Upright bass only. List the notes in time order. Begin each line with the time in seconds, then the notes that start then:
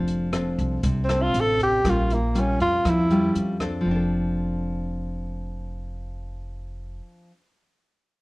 Already playing: F1
0.59 C2
0.84 C2
1.34 A1
1.85 A#1
2.60 F2
2.84 F2
3.35 F2
3.85 F1